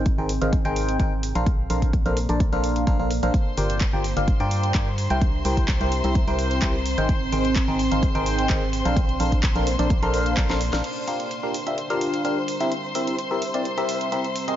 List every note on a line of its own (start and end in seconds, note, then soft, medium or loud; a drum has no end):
0.00 0.16 G#1 medium
0.00 3.95 C4 medium
0.00 1.23 G#4 medium
0.00 2.08 G5 medium
0.00 1.23 A#5 medium
0.06 kick loud
0.06 closed hi-hat medium
0.18 0.39 G#1 loud
0.18 0.31 D#4 medium
0.18 0.31 G#4 medium
0.18 0.31 A#4 medium
0.18 0.31 C5 medium
0.18 0.31 G5 medium
0.29 open hi-hat loud
0.41 0.63 G#1 medium
0.41 0.54 D#4 medium
0.41 0.54 G#4 medium
0.41 0.54 A#4 medium
0.41 0.54 C5 medium
0.41 0.54 F5 medium
0.41 closed hi-hat soft
0.53 kick loud
0.53 closed hi-hat medium
0.65 0.97 G#1 medium
0.65 0.97 D#4 medium
0.65 0.97 G#4 medium
0.65 0.97 A#4 medium
0.65 0.97 C5 medium
0.65 0.97 G5 loud
0.65 closed hi-hat soft
0.76 open hi-hat loud
0.89 closed hi-hat soft
1.00 1.33 G#1 medium
1.00 1.13 D#4 medium
1.00 1.13 G#4 medium
1.00 1.13 A#4 medium
1.00 1.13 C5 medium
1.00 1.13 G5 medium
1.00 kick loud
1.00 closed hi-hat medium
1.23 open hi-hat loud
1.35 1.68 A#1 loud
1.35 1.48 D4 medium
1.35 1.48 A4 medium
1.35 1.48 A#4 medium
1.35 1.48 C5 medium
1.35 1.48 F5 medium
1.35 closed hi-hat soft
1.46 4.00 A#3 medium
1.46 kick loud
1.46 closed hi-hat medium
1.62 4.00 D5 medium
1.70 2.03 A#1 loud
1.70 1.91 D4 medium
1.70 1.91 A4 medium
1.70 1.91 A#4 medium
1.70 1.91 C5 medium
1.70 1.91 F5 medium
1.70 open hi-hat loud
1.82 kick medium
1.82 closed hi-hat soft
1.93 3.34 A5 medium
1.93 kick loud
1.93 closed hi-hat medium
2.06 2.27 A#1 loud
2.06 2.18 D4 medium
2.06 2.18 A4 medium
2.06 2.18 A#4 medium
2.06 2.18 C5 medium
2.06 2.18 F5 medium
2.06 closed hi-hat soft
2.17 open hi-hat medium
2.29 2.50 A#1 medium
2.29 2.42 D4 medium
2.29 2.42 A4 medium
2.29 2.42 A#4 medium
2.29 2.42 C5 medium
2.29 2.42 D5 medium
2.29 closed hi-hat soft
2.40 kick loud
2.40 closed hi-hat medium
2.53 2.85 A#1 medium
2.53 2.85 D4 medium
2.53 2.85 A4 medium
2.53 2.85 A#4 medium
2.53 2.85 C5 medium
2.53 2.85 F5 loud
2.53 closed hi-hat soft
2.64 open hi-hat loud
2.76 closed hi-hat soft
2.87 2.97 A#1 medium
2.87 2.98 D4 medium
2.87 2.98 A4 medium
2.87 2.98 A#4 medium
2.87 2.98 C5 medium
2.87 2.98 F5 loud
2.87 kick loud
2.87 closed hi-hat medium
2.99 3.20 A#1 medium
2.99 3.12 D4 medium
2.99 3.12 A4 medium
2.99 3.12 A#4 medium
2.99 3.12 C5 medium
2.99 3.12 F5 medium
3.11 open hi-hat loud
3.23 3.31 A#1 loud
3.23 3.33 D4 medium
3.23 3.33 A4 medium
3.23 3.33 A#4 medium
3.23 3.33 C5 medium
3.23 3.33 F5 medium
3.23 closed hi-hat soft
3.34 5.73 D4 medium
3.34 10.83 C5 medium
3.34 10.83 C6 medium
3.34 kick loud
3.34 closed hi-hat medium
3.55 3.91 G1 medium
3.55 3.78 F4 medium
3.55 6.86 G4 medium
3.55 3.78 G4 medium
3.55 3.78 A#4 medium
3.55 3.78 D5 medium
3.55 3.78 G5 medium
3.55 open hi-hat medium
3.67 4.98 F5 medium
3.67 closed hi-hat soft
3.73 8.73 A#5 medium
3.81 kick loud
3.81 clap loud
3.81 closed hi-hat medium
3.93 4.14 G1 medium
3.93 4.06 F4 medium
3.93 4.06 G4 medium
3.93 4.06 A#4 medium
3.93 4.06 D5 medium
3.93 4.06 G5 medium
4.04 open hi-hat loud
4.17 4.38 G1 medium
4.17 4.29 F4 medium
4.17 4.29 G4 medium
4.17 4.29 A#4 medium
4.17 4.29 D5 medium
4.17 4.29 F5 medium
4.17 closed hi-hat soft
4.28 kick loud
4.28 closed hi-hat medium
4.40 4.72 G2 medium
4.40 4.72 F4 medium
4.40 4.72 G4 medium
4.40 4.72 A#4 medium
4.40 4.72 D5 medium
4.40 4.72 G5 loud
4.40 closed hi-hat soft
4.51 open hi-hat loud
4.63 closed hi-hat soft
4.75 5.08 G2 loud
4.75 4.88 F4 medium
4.75 4.88 G4 medium
4.75 4.88 A#4 medium
4.75 4.88 D5 medium
4.75 4.88 G5 medium
4.75 kick loud
4.75 clap loud
4.75 closed hi-hat medium
4.98 11.50 C4 medium
4.98 open hi-hat loud
5.10 5.43 C2 medium
5.10 5.23 E4 medium
5.10 5.23 G4 medium
5.10 5.23 A#4 medium
5.10 5.23 C5 medium
5.10 6.86 E5 medium
5.10 5.23 G5 medium
5.10 closed hi-hat soft
5.22 kick loud
5.22 closed hi-hat medium
5.45 5.78 C2 medium
5.45 5.66 E4 medium
5.45 5.66 G4 medium
5.45 5.66 A#4 medium
5.45 5.66 C5 medium
5.45 5.66 G5 medium
5.45 open hi-hat loud
5.57 kick medium
5.57 closed hi-hat soft
5.68 kick loud
5.68 clap loud
5.68 closed hi-hat medium
5.81 6.02 C2 loud
5.81 5.93 E4 medium
5.81 5.93 G4 medium
5.81 5.93 A#4 medium
5.81 5.93 C5 medium
5.81 5.93 G5 medium
5.81 closed hi-hat soft
5.92 open hi-hat medium
6.04 6.25 C2 medium
6.04 6.17 E4 medium
6.04 6.17 G4 medium
6.04 6.17 A#4 medium
6.04 6.17 C5 medium
6.04 6.17 E5 medium
6.04 closed hi-hat soft
6.15 kick loud
6.15 closed hi-hat medium
6.28 6.60 C2 medium
6.28 6.60 E4 medium
6.28 6.60 G4 medium
6.28 6.60 A#4 medium
6.28 6.60 C5 medium
6.28 6.60 G5 loud
6.28 closed hi-hat soft
6.39 open hi-hat loud
6.51 closed hi-hat soft
6.62 6.95 C2 medium
6.62 6.75 E4 medium
6.62 6.75 G4 medium
6.62 6.75 A#4 medium
6.62 6.75 C5 medium
6.62 6.75 G5 medium
6.62 kick loud
6.62 clap loud
6.62 closed hi-hat medium
6.86 open hi-hat loud
6.98 7.30 G#1 loud
6.98 7.10 D#4 medium
6.98 7.10 G#4 medium
6.98 7.10 A#4 medium
6.98 7.10 C5 medium
6.98 7.10 G5 medium
6.98 closed hi-hat medium
7.09 kick loud
7.09 closed hi-hat medium
7.14 8.73 G#4 medium
7.32 7.66 G#1 loud
7.32 7.53 D#4 medium
7.32 7.53 G#4 medium
7.32 7.53 A#4 medium
7.32 7.53 C5 medium
7.32 7.53 G5 medium
7.32 open hi-hat medium
7.40 9.35 G5 medium
7.45 closed hi-hat medium
7.56 kick loud
7.56 clap loud
7.56 closed hi-hat medium
7.68 7.89 G#1 loud
7.68 7.80 D#4 medium
7.68 7.80 G#4 medium
7.68 7.80 A#4 medium
7.68 7.81 C5 medium
7.68 7.80 G5 medium
7.79 open hi-hat medium
7.92 8.13 G#1 loud
7.92 8.04 D#4 medium
7.92 8.04 G#4 medium
7.92 8.04 A#4 medium
7.92 8.04 C5 medium
7.92 8.04 F5 medium
7.92 closed hi-hat medium
8.03 kick loud
8.03 closed hi-hat medium
8.15 8.47 G#1 medium
8.15 8.47 D#4 loud
8.15 8.47 G#4 medium
8.15 8.47 A#4 medium
8.15 8.47 C5 medium
8.15 8.47 G5 loud
8.15 closed hi-hat soft
8.26 open hi-hat loud
8.39 closed hi-hat medium
8.50 8.83 G#1 medium
8.50 8.63 D#4 medium
8.50 8.63 G#4 medium
8.50 8.63 A#4 medium
8.50 8.63 C5 medium
8.50 8.63 G5 loud
8.50 kick loud
8.50 clap loud
8.50 closed hi-hat medium
8.73 open hi-hat loud
8.85 9.18 A#1 loud
8.85 8.98 D4 medium
8.85 8.98 A4 medium
8.85 8.98 A#4 medium
8.85 8.98 C5 medium
8.85 8.98 F5 medium
8.85 closed hi-hat medium
8.90 11.50 A#3 medium
8.97 kick loud
8.97 closed hi-hat medium
9.09 closed hi-hat soft
9.20 9.53 A#1 loud
9.20 9.41 D4 medium
9.20 9.41 A4 medium
9.20 9.41 A#4 medium
9.20 9.41 C5 medium
9.20 11.50 D5 medium
9.20 9.41 F5 medium
9.20 open hi-hat loud
9.32 kick medium
9.32 closed hi-hat medium
9.37 10.84 A5 medium
9.43 kick loud
9.43 clap loud
9.43 closed hi-hat medium
9.56 9.77 A#1 loud
9.56 9.68 D4 medium
9.56 9.68 A4 medium
9.56 9.68 A#4 medium
9.56 9.68 C5 medium
9.56 9.68 F5 medium
9.56 closed hi-hat soft
9.67 open hi-hat medium
9.79 10.00 A#1 loud
9.79 9.91 D4 medium
9.79 9.91 A4 medium
9.79 9.91 A#4 medium
9.79 9.91 C5 medium
9.79 9.91 D5 medium
9.79 closed hi-hat medium
9.90 kick loud
9.90 closed hi-hat medium
10.02 10.35 A#1 medium
10.02 10.35 D4 loud
10.02 10.35 A4 medium
10.02 10.35 A#4 medium
10.02 10.35 C5 medium
10.02 10.35 F5 loud
10.02 closed hi-hat soft
10.14 open hi-hat loud
10.26 closed hi-hat medium
10.37 10.47 A#1 loud
10.37 10.48 D4 loud
10.37 10.48 A4 medium
10.37 10.48 A#4 medium
10.37 10.48 C5 medium
10.37 10.48 F5 loud
10.37 kick loud
10.37 clap loud
10.37 closed hi-hat medium
10.49 10.70 A#1 loud
10.49 10.62 D4 medium
10.49 10.62 A4 medium
10.49 10.62 A#4 medium
10.49 10.62 C5 medium
10.49 10.62 F5 loud
10.49 snare medium
10.49 closed hi-hat soft
10.61 open hi-hat loud
10.73 10.82 A#1 loud
10.73 10.83 D4 medium
10.73 10.83 A4 medium
10.73 10.83 A#4 medium
10.73 10.83 C5 medium
10.73 10.83 F5 loud
10.73 snare loud
10.73 closed hi-hat medium
10.84 13.23 D4 medium
10.84 14.56 C5 medium
10.84 14.56 C6 medium
10.84 closed hi-hat medium
10.84 crash medium
10.92 12.48 F5 medium
11.08 11.28 D4 medium
11.08 11.28 F4 medium
11.08 11.28 G4 medium
11.08 14.36 G4 medium
11.08 11.28 A#4 medium
11.08 11.28 F5 medium
11.08 open hi-hat medium
11.20 closed hi-hat soft
11.31 closed hi-hat medium
11.43 11.56 D4 medium
11.43 11.56 F4 medium
11.43 11.56 G4 medium
11.43 11.56 A#4 medium
11.43 11.56 F5 medium
11.49 14.56 A#5 medium
11.54 open hi-hat medium
11.67 11.79 D4 medium
11.67 11.79 F4 medium
11.67 11.79 G4 medium
11.67 11.79 A#4 medium
11.67 11.79 E5 medium
11.67 closed hi-hat soft
11.78 closed hi-hat medium
11.90 12.22 D4 medium
11.90 12.22 F4 medium
11.90 12.22 G4 medium
11.90 12.22 A#4 medium
11.90 12.22 F5 loud
11.90 closed hi-hat soft
12.01 open hi-hat medium
12.14 closed hi-hat soft
12.25 12.38 D4 medium
12.25 12.38 F4 medium
12.25 12.38 G4 medium
12.25 12.38 A#4 medium
12.25 12.38 F5 medium
12.25 closed hi-hat medium
12.48 14.56 C4 medium
12.48 open hi-hat loud
12.60 12.73 C4 medium
12.60 12.73 E4 medium
12.60 12.73 G4 medium
12.60 12.73 A#4 medium
12.60 12.73 E5 medium
12.60 closed hi-hat soft
12.72 closed hi-hat medium
12.82 14.36 E5 medium
12.95 13.16 C4 medium
12.95 13.16 E4 medium
12.95 13.16 G4 medium
12.95 13.16 A#4 medium
12.95 13.16 E5 medium
12.95 open hi-hat medium
13.07 closed hi-hat soft
13.19 closed hi-hat medium
13.31 13.43 C4 medium
13.31 13.43 E4 medium
13.31 13.43 G4 medium
13.31 13.43 A#4 medium
13.31 13.43 E5 medium
13.42 open hi-hat medium
13.54 13.66 C4 medium
13.54 13.66 E4 medium
13.54 13.66 G4 medium
13.54 13.67 A#4 medium
13.54 13.66 D5 medium
13.54 closed hi-hat soft
13.65 closed hi-hat medium
13.78 14.10 C4 medium
13.78 14.10 E4 medium
13.78 14.10 G4 medium
13.78 14.09 A#4 medium
13.78 14.10 E5 medium
13.78 closed hi-hat soft
13.89 open hi-hat medium
14.01 closed hi-hat soft
14.12 14.25 C4 medium
14.12 14.25 E4 medium
14.12 14.25 G4 medium
14.12 14.25 A#4 medium
14.12 14.25 E5 medium
14.12 closed hi-hat medium
14.24 closed hi-hat soft
14.36 open hi-hat loud
14.41 14.56 G#3 medium
14.48 14.56 C4 medium
14.48 14.56 G4 medium
14.48 14.56 G#4 medium
14.48 14.56 A#4 medium
14.48 14.56 D#5 medium
14.48 closed hi-hat soft